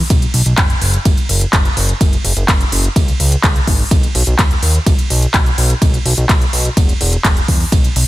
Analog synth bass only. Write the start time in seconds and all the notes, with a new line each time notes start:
0.10 B1
0.34 B1
0.46 B1
0.58 F#1
0.82 F#1
1.05 F#1
1.29 F#1
1.53 F#1
1.77 F#1
2.01 F#1
2.25 F#1
2.37 F#1
2.48 F#1
2.72 F#1
2.96 C#2
3.20 C#2
3.44 C#2
3.67 G#1
3.91 B1
4.15 B1
4.27 B1
4.39 D#2
4.63 D#2
4.86 B1
5.10 B1
5.34 B1
5.58 B1
5.82 B1
6.05 B1
6.17 B1
6.29 B1
6.53 B1
6.77 E1
7.01 E1
7.25 E1
7.48 E2
7.72 B1
7.96 B1